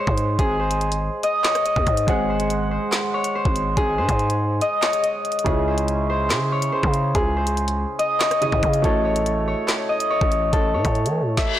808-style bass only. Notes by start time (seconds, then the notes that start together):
0.07 G#2
0.39 G#1
1.76 D#2
1.87 G#2
2.08 G#1
3.45 G#1
3.77 G#1
3.98 G#2
4.09 G#2
5.46 C#2
6.30 C#3
6.83 C#3
7.15 C#2
8.52 G#2
8.63 C#3
8.84 A1
10.21 A1
10.53 A1
10.74 A2
10.85 A2
11.06 E3
11.22 A2